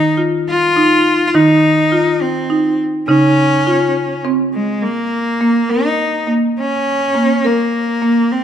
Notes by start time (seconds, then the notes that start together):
Already playing: D#3 D#4
0.17 F4
0.50 F4
0.76 D#4
1.27 F4
1.34 D#3 D#4
1.92 F4
2.21 C4
2.50 D#4
3.08 C#3 C#4 D#4
3.67 F4
4.25 C4
4.54 G#3
4.83 A#3
5.41 A#3
5.69 D#4 A#4
6.27 A#3
6.59 C#4
7.15 A#3
7.45 A#3 A#4
8.02 A#3
8.32 C4